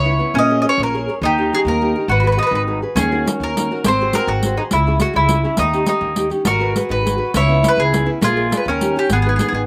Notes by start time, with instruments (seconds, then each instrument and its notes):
Already playing: upright bass C#2, nylon-string guitar G#3, mandolin E4 C#5
0.05 nylon-string guitar B3 C#4 E4
0.19 nylon-string guitar B3 C#4 E4
0.34 upright bass A#1, nylon-string guitar A#3, mandolin C#4
0.38 mandolin D#5
0.51 nylon-string guitar G#4 A#4 C#5
0.62 nylon-string guitar G#4 A#4, mandolin D#5
0.66 nylon-string guitar C#5, mandolin C#5
0.78 upright bass A#1, nylon-string guitar A#3
0.83 mandolin A#4
0.94 nylon-string guitar G#4 A#4 C#5
1.08 nylon-string guitar G#4 A#4 C#5
1.22 upright bass D#2, nylon-string guitar D#3, mandolin D#4 G4
1.38 nylon-string guitar C#4 D#4 G4
1.53 nylon-string guitar C#4 D#4 G4, mandolin G#4
1.65 upright bass D#2, nylon-string guitar A#3, mandolin A#4
1.81 nylon-string guitar C#4 D#4 G4
1.95 nylon-string guitar C#4 D#4 G4
2.08 upright bass G#1, nylon-string guitar G#3, mandolin F#4 B4
2.20 nylon-string guitar F#4 G#4, mandolin B4
2.24 nylon-string guitar B4, mandolin B4
2.32 mandolin B4
2.37 mandolin D#4, nylon-string guitar F#4 G#4 B4
2.43 mandolin B4
2.47 mandolin B4
2.51 upright bass G#1, nylon-string guitar D#3
2.55 mandolin B4
2.67 nylon-string guitar F#4 G#4 B4
2.82 nylon-string guitar F#4 G#4 B4
2.95 upright bass D#2, nylon-string guitar D#3, mandolin C#4 G#4, riq
3.11 nylon-string guitar D#4 F#4 A#4
3.25 nylon-string guitar D#4 F#4 A#4, riq
3.40 upright bass D#2, nylon-string guitar A#3, mandolin A#4
3.56 nylon-string guitar D#4 F#4 A#4, riq
3.71 nylon-string guitar D#4 F#4 A#4
3.84 upright bass G#1, nylon-string guitar G#3, mandolin C4 C5, riq
4.01 nylon-string guitar F#4 G#4 C5
4.13 nylon-string guitar F#4 G#4 C5, mandolin A#4, riq
4.27 upright bass G#1, nylon-string guitar D#3, mandolin F#4
4.43 nylon-string guitar F#4 G#4 C5, riq
4.57 mandolin D#4, nylon-string guitar F#4 G#4 C5
4.71 upright bass C#2, nylon-string guitar C#3, mandolin E4, riq
4.87 nylon-string guitar C#4 E4 G#4
5.00 nylon-string guitar C#4 E4 G#4, mandolin F#4, riq
5.14 upright bass C#2, nylon-string guitar G#3, mandolin E4
5.29 nylon-string guitar C#4 E4 G#4, riq
5.44 nylon-string guitar C#4 E4 G#4
5.57 upright bass D#2, nylon-string guitar D#3, mandolin D#4, riq
5.73 nylon-string guitar C#4 D#4 G4, riq
5.86 nylon-string guitar C#4 D#4 G4, mandolin D#4, riq
6.01 upright bass D#2, nylon-string guitar A#3
6.16 nylon-string guitar C#4 D#4 G4, riq
6.30 nylon-string guitar C#4 D#4 G4, riq
6.45 upright bass G#1, nylon-string guitar G#3, mandolin F#4 A#4, riq
6.60 nylon-string guitar F#4 G#4 B4
6.76 nylon-string guitar F#4 G#4 B4, riq
6.89 upright bass G#1, nylon-string guitar D#3, mandolin B4
7.05 nylon-string guitar F#4 G#4 B4, riq
7.18 nylon-string guitar F#4 G#4 B4
7.34 upright bass C#2, nylon-string guitar C#3, mandolin E4 C#5, riq
7.48 nylon-string guitar B3 C#4 E4
7.63 nylon-string guitar B3 C#4 E4, riq
7.68 mandolin B4
7.76 upright bass C#2, nylon-string guitar G#3, mandolin G#4
7.92 nylon-string guitar B3 C#4 E4, riq
8.06 nylon-string guitar B3 C#4 E4
8.21 upright bass A#1, nylon-string guitar A#3, mandolin F4 G#4, riq
8.36 nylon-string guitar G#4 A#4 D5
8.50 nylon-string guitar G#4 A#4 D5, riq
8.57 mandolin B4
8.65 upright bass D#2, nylon-string guitar D#3, mandolin C#4
8.70 mandolin A#4
8.81 nylon-string guitar C#4 D#4 G4, riq
8.96 nylon-string guitar C#4 D#4 G4, mandolin G4
9.10 upright bass G#1, nylon-string guitar G#3, mandolin B3 G#4, riq
9.22 nylon-string guitar D#4, mandolin G#4
9.26 nylon-string guitar G#4 B4, mandolin G#4
9.36 mandolin G#4, riq
9.41 nylon-string guitar D#4 G#4 B4, mandolin G#4
9.48 mandolin G#4
9.53 upright bass G#1, nylon-string guitar D#3, mandolin G#4